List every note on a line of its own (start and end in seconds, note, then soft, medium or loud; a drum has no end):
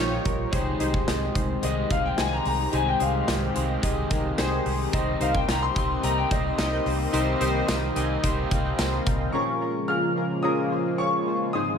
0.00 0.18 A#1 medium
0.00 0.55 A#2 medium
0.00 0.49 D#3 medium
0.00 0.49 F3 medium
0.00 0.49 G3 medium
0.00 0.49 A#3 medium
0.00 0.54 A#3 soft
0.00 0.25 D#4 loud
0.00 3.19 D#4 soft
0.00 0.25 F4 loud
0.00 0.49 F4 medium
0.00 0.25 G4 loud
0.00 0.26 A#4 loud
0.00 0.53 C5 medium
0.00 0.54 C#5 loud
0.25 0.45 A#1 medium
0.25 0.43 D#4 medium
0.25 0.43 F4 medium
0.25 0.43 G4 medium
0.25 0.44 A#4 medium
0.25 kick loud
0.25 closed hi-hat medium
0.51 0.73 C2 loud
0.51 1.60 G#2 medium
0.51 1.31 C3 medium
0.51 9.30 D#3 medium
0.51 1.63 D#3 medium
0.51 4.89 G#3 medium
0.51 9.30 C4 medium
0.51 0.70 D#4 loud
0.51 0.71 G4 medium
0.51 9.30 G4 medium
0.51 0.71 G#4 medium
0.51 0.71 C5 loud
0.51 kick loud
0.51 closed hi-hat medium
0.56 1.63 G#3 loud
0.80 1.00 C2 medium
0.80 0.98 D#4 loud
0.80 0.98 G4 medium
0.80 0.98 G#4 loud
0.80 0.99 C5 loud
0.80 closed hi-hat medium
0.94 kick medium
1.07 1.28 C2 loud
1.07 1.25 D#4 medium
1.07 1.26 G4 medium
1.07 1.26 G#4 medium
1.07 1.26 D#5 medium
1.07 snare loud
1.07 closed hi-hat medium
1.34 1.55 C2 medium
1.34 1.53 D#4 medium
1.34 1.53 G4 medium
1.34 1.53 G#4 medium
1.34 1.53 C5 medium
1.34 kick medium
1.34 closed hi-hat medium
1.62 1.83 C2 medium
1.62 1.90 G#2 medium
1.62 1.91 D#3 medium
1.62 1.88 G#3 medium
1.62 1.80 D#4 medium
1.62 1.81 G4 medium
1.62 1.81 G#4 medium
1.62 1.81 C5 medium
1.62 1.92 D#5 medium
1.62 closed hi-hat loud
1.89 2.10 C2 medium
1.89 2.73 D#3 soft
1.89 2.73 G#3 soft
1.89 2.08 D#4 medium
1.89 2.08 G4 medium
1.89 2.08 G#4 medium
1.89 2.08 C5 medium
1.89 2.05 F5 medium
1.89 kick loud
1.89 closed hi-hat medium
2.06 2.18 G5 medium
2.17 2.38 C2 medium
2.17 2.35 D#4 medium
2.17 2.36 G4 medium
2.17 2.36 G#4 medium
2.17 2.36 C5 loud
2.17 2.33 G#5 loud
2.17 snare loud
2.17 closed hi-hat medium
2.33 2.45 A#5 medium
2.44 2.66 C2 loud
2.44 2.63 D#4 medium
2.44 2.63 G4 medium
2.44 2.63 G#4 medium
2.44 2.64 C5 medium
2.44 2.74 A#5 loud
2.44 open hi-hat medium
2.72 2.93 C2 loud
2.72 3.55 G#2 medium
2.72 3.52 C3 medium
2.72 3.57 D#3 medium
2.72 3.53 G#3 medium
2.72 2.91 D#4 medium
2.72 2.91 G4 medium
2.72 2.91 G#4 medium
2.72 2.91 C5 loud
2.72 2.88 G#5 medium
2.72 closed hi-hat medium
2.88 3.02 G5 medium
3.00 3.21 C2 medium
3.00 3.18 D#4 medium
3.00 3.18 G4 medium
3.00 3.19 G#4 medium
3.00 3.19 C5 loud
3.00 4.35 F5 medium
3.00 closed hi-hat medium
3.27 3.48 C2 loud
3.27 3.46 D#4 medium
3.27 3.46 G4 medium
3.27 3.46 G#4 medium
3.27 3.46 C5 medium
3.27 snare loud
3.27 closed hi-hat medium
3.54 3.76 C2 medium
3.54 3.82 D#3 soft
3.54 3.83 G#3 soft
3.54 3.73 D#4 medium
3.54 3.73 G4 medium
3.54 3.74 G#4 medium
3.54 3.74 C5 medium
3.54 closed hi-hat medium
3.82 4.03 C2 loud
3.82 4.10 G#2 medium
3.82 4.11 D#3 medium
3.82 4.08 G#3 medium
3.82 4.01 D#4 medium
3.82 4.01 G4 medium
3.82 4.01 G#4 medium
3.82 4.01 D#5 loud
3.82 kick medium
3.82 closed hi-hat loud
4.09 4.31 C2 loud
4.09 4.92 D#3 soft
4.09 4.93 G#3 medium
4.09 4.28 D#4 medium
4.09 4.29 G4 medium
4.09 4.29 G#4 medium
4.09 4.29 A#4 medium
4.09 kick loud
4.09 closed hi-hat medium
4.38 4.58 C2 loud
4.38 4.56 D#4 loud
4.38 4.56 G4 loud
4.38 4.56 G#4 loud
4.38 4.57 C5 loud
4.38 snare loud
4.38 closed hi-hat medium
4.65 4.85 C2 loud
4.65 4.83 D#4 medium
4.65 4.84 G4 medium
4.65 4.84 G#4 medium
4.65 4.84 C5 medium
4.65 open hi-hat medium
4.92 5.13 C2 loud
4.92 5.75 C3 medium
4.92 5.72 C3 medium
4.92 5.76 G3 medium
4.92 9.30 A#3 medium
4.92 5.73 C4 medium
4.92 5.11 D#4 medium
4.92 5.11 G4 medium
4.92 5.11 A#4 medium
4.92 5.12 C5 loud
4.92 5.22 D#5 medium
4.92 kick loud
4.92 closed hi-hat medium
5.20 5.40 C2 loud
5.20 5.38 D#4 medium
5.20 5.39 G4 medium
5.20 5.39 A#4 medium
5.20 5.39 C5 loud
5.20 5.36 F5 medium
5.20 closed hi-hat medium
5.35 5.49 G5 medium
5.35 kick medium
5.48 5.68 C2 loud
5.48 5.66 D#4 medium
5.48 5.66 G4 medium
5.48 5.66 A#4 medium
5.48 5.67 C5 medium
5.48 5.63 A#5 medium
5.48 snare loud
5.48 closed hi-hat medium
5.63 5.75 C6 loud
5.75 5.96 C2 medium
5.75 6.02 G3 soft
5.75 6.03 C4 medium
5.75 5.93 D#4 medium
5.75 5.94 G4 medium
5.75 5.94 A#4 medium
5.75 5.94 D#5 medium
5.75 6.02 C6 loud
5.75 kick medium
5.75 closed hi-hat medium
6.02 6.23 C2 medium
6.02 6.30 C3 medium
6.02 6.31 G3 medium
6.02 6.29 C4 medium
6.02 6.21 D#4 medium
6.02 6.21 G4 medium
6.02 6.21 A#4 medium
6.02 6.22 D#5 medium
6.02 6.18 A#5 loud
6.02 closed hi-hat loud
6.18 6.30 G5 medium
6.30 6.51 C2 loud
6.30 7.13 G3 soft
6.30 7.13 C4 medium
6.30 6.49 D#4 medium
6.30 6.49 G4 medium
6.30 6.49 A#4 medium
6.30 6.49 C5 medium
6.30 7.65 D#5 loud
6.30 kick loud
6.30 closed hi-hat medium
6.58 6.78 C2 loud
6.58 6.76 D#4 loud
6.58 6.76 G4 medium
6.58 6.76 A#4 medium
6.58 6.77 D#5 loud
6.58 snare loud
6.58 closed hi-hat medium
6.85 7.06 C2 loud
6.85 7.04 D#4 medium
6.85 7.04 G4 medium
6.85 7.04 A#4 medium
6.85 7.04 C5 medium
6.85 open hi-hat medium
7.13 7.33 C2 loud
7.13 7.96 C3 medium
7.13 7.92 C3 medium
7.13 7.96 G3 medium
7.13 7.94 C4 loud
7.13 7.31 D#4 loud
7.13 7.31 G4 loud
7.13 7.31 A#4 loud
7.13 7.32 C5 loud
7.13 closed hi-hat medium
7.40 7.61 C2 loud
7.40 7.59 D#4 loud
7.40 7.59 G4 loud
7.40 7.59 A#4 loud
7.40 7.59 C5 loud
7.40 closed hi-hat medium
7.68 7.88 C2 loud
7.68 7.86 D#4 medium
7.68 7.86 G4 medium
7.68 7.87 A#4 medium
7.68 7.87 C5 medium
7.68 snare loud
7.68 closed hi-hat medium
7.68 tambourine medium
7.95 8.16 C2 loud
7.95 8.23 G3 soft
7.95 8.23 C4 medium
7.95 8.14 D#4 medium
7.95 8.14 G4 medium
7.95 8.14 A#4 medium
7.95 8.14 D#5 loud
7.95 8.22 G#5 medium
7.95 closed hi-hat medium
8.23 8.43 C2 loud
8.23 8.51 C3 medium
8.23 8.52 G3 loud
8.23 8.49 C4 loud
8.23 8.41 D#4 medium
8.23 8.41 G4 medium
8.23 8.41 A#4 medium
8.23 8.42 C5 loud
8.23 8.49 G5 medium
8.23 kick medium
8.23 closed hi-hat loud
8.50 8.71 C2 loud
8.50 9.35 G3 soft
8.50 9.33 C4 medium
8.50 8.64 F5 medium
8.50 8.64 G5 medium
8.50 kick loud
8.50 closed hi-hat medium
8.65 8.78 D#5 medium
8.65 8.78 G5 medium
8.78 8.98 C2 loud
8.78 9.04 D#5 medium
8.78 8.92 G5 medium
8.78 8.92 A#5 medium
8.78 snare loud
8.78 closed hi-hat medium
8.78 tambourine medium
8.92 9.05 C6 medium
9.06 9.26 C2 medium
9.06 9.32 F5 medium
9.06 9.19 G5 medium
9.06 9.19 A#5 medium
9.06 kick loud
9.06 closed hi-hat medium
9.20 9.47 D#5 medium
9.20 9.46 G5 medium
9.33 10.12 A#2 medium
9.33 11.52 C#3 medium
9.33 11.51 F3 medium
9.33 11.78 G#3 medium
9.33 11.52 A#3 medium
9.33 9.52 C#4 medium
9.33 11.52 F4 medium
9.33 9.52 F4 medium
9.33 9.52 G#4 medium
9.33 9.52 A#4 loud
9.33 9.90 C#6 medium
9.61 9.79 C#4 medium
9.61 9.79 F4 medium
9.61 9.79 G#4 medium
9.61 9.80 A#4 medium
9.88 10.07 C#4 medium
9.88 10.07 F4 medium
9.88 10.07 G#4 medium
9.88 10.07 A#4 medium
9.88 10.45 F6 medium
10.16 10.34 C#4 medium
10.16 10.34 F4 medium
10.16 10.35 G#4 medium
10.16 10.35 A#4 medium
10.43 10.62 C#4 loud
10.43 10.62 F4 medium
10.43 10.62 G#4 medium
10.43 10.62 A#4 loud
10.43 11.00 D#6 medium
10.71 10.89 C#4 medium
10.71 10.89 F4 medium
10.71 10.89 G#4 medium
10.71 10.90 C5 medium
10.98 11.17 C#4 medium
10.98 11.17 F4 medium
10.98 11.17 G#4 medium
10.98 11.17 C#5 medium
10.98 11.37 C#6 medium
11.26 11.44 C#4 medium
11.26 11.44 F4 medium
11.26 11.45 G#4 medium
11.26 11.45 C5 medium
11.53 11.78 G#2 medium
11.53 11.78 C3 medium
11.53 11.78 D#3 medium
11.53 11.72 C4 medium
11.53 11.78 D#4 medium
11.53 11.72 D#4 medium
11.53 11.78 G#4 medium
11.53 11.72 G#4 medium
11.53 11.72 C5 loud
11.53 11.78 D#6 medium